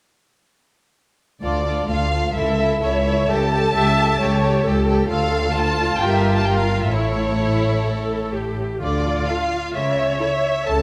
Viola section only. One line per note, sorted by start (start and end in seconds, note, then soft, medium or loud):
2.35 2.78 A4 soft
2.81 3.28 C#5 soft
3.29 3.75 A4 soft
3.76 4.20 E5 soft
4.20 4.64 C#5 medium
4.65 5.09 A4 soft
5.10 5.54 A4 medium
5.55 6.89 F4 medium
6.92 7.34 E4 soft
7.40 7.84 E4 soft
7.87 8.34 A4 medium
8.34 8.82 G4 soft
8.82 9.71 F4 soft
9.74 10.68 C#5 medium
10.68 10.82 A4 soft